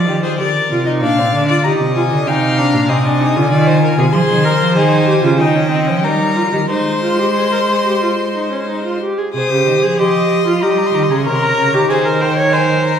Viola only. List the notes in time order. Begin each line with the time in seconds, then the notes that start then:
Already playing: F4
0.39 G4
0.71 F4
0.86 D#4
1.02 D4
1.18 C4
1.34 D4
1.50 F4
1.65 G4
1.96 F4
2.27 D#4
2.59 D4
2.89 C4
3.05 D4
3.21 D#4
3.36 F4
4.14 G#4
4.45 A#4
4.76 G#4
5.07 G4
5.23 F4
5.39 D#4
5.55 C#4
5.70 C4
5.87 C#4
6.03 D#4
6.36 F4
6.52 G4
6.68 D#4
7.02 F4
7.19 G4
7.35 G#4
7.52 A#4
7.68 G#4
7.85 G4
8.02 F4
8.34 D#4
8.51 C#4
8.68 D#4
8.84 F4
9.01 G4
9.18 G#4
9.34 G#4
9.51 G4
9.83 G#4
9.98 G4
10.46 F4
10.63 G4
11.10 G#4
11.26 A#4
11.74 G4
11.89 G#4
12.06 A#4
12.21 C5
12.37 C#5
12.53 C5